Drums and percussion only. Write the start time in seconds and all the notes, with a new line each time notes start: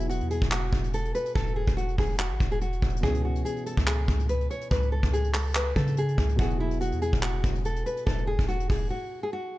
0.10 closed hi-hat
0.21 closed hi-hat
0.30 closed hi-hat
0.42 kick
0.52 clap, closed hi-hat
0.73 kick, closed hi-hat
0.84 closed hi-hat
0.93 closed hi-hat
1.05 closed hi-hat
1.15 closed hi-hat
1.25 closed hi-hat
1.36 kick, closed hi-hat
1.47 closed hi-hat
1.68 kick, closed hi-hat
1.78 closed hi-hat
1.89 closed hi-hat
1.98 kick, open hi-hat
2.19 clap, closed hi-hat
2.40 kick, closed hi-hat
2.51 closed hi-hat
2.61 closed hi-hat
2.73 closed hi-hat
2.82 kick, closed hi-hat
2.89 closed hi-hat
2.96 closed hi-hat
3.03 kick, closed hi-hat
3.14 closed hi-hat
3.35 closed hi-hat
3.46 closed hi-hat
3.56 closed hi-hat
3.66 closed hi-hat
3.77 kick
3.87 clap, closed hi-hat
4.08 kick, closed hi-hat
4.19 closed hi-hat
4.29 closed hi-hat
4.41 closed hi-hat
4.51 closed hi-hat
4.61 closed hi-hat
4.71 kick, closed hi-hat
4.82 closed hi-hat
5.03 kick, closed hi-hat
5.13 closed hi-hat
5.24 closed hi-hat
5.34 clap, open hi-hat
5.55 clap
5.76 kick, closed hi-hat
5.87 closed hi-hat
5.97 closed hi-hat
6.08 closed hi-hat
6.18 kick, closed hi-hat
6.29 closed hi-hat
6.39 kick, closed hi-hat
6.50 closed hi-hat
6.71 closed hi-hat
6.81 closed hi-hat
6.92 closed hi-hat
7.02 closed hi-hat
7.13 kick
7.23 clap, closed hi-hat
7.44 kick, closed hi-hat
7.55 closed hi-hat
7.65 closed hi-hat
7.76 closed hi-hat
7.86 closed hi-hat
7.97 closed hi-hat
8.07 kick, closed hi-hat
8.18 closed hi-hat
8.39 kick, closed hi-hat
8.49 closed hi-hat
8.60 closed hi-hat
8.70 kick, open hi-hat